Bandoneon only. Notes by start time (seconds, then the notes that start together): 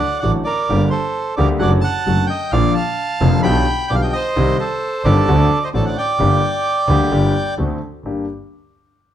Already playing: D5 F#5
0.20 D5 F#5
0.44 A#4 D5
0.90 A4 C5
1.36 A#4 D5
1.59 D5 F#5
1.81 F#5 A5
2.27 D#5 G5
2.52 D5 F5
2.74 F5 A5
3.43 G5 B5
3.88 D5 G5
3.95 F5
4.01 D#5 G5
4.13 C5 D#5
4.59 A4 C5
5.04 A4 D5
5.63 C5 D#5
5.74 A4 D5
5.85 D5 F#5
5.98 D5 G5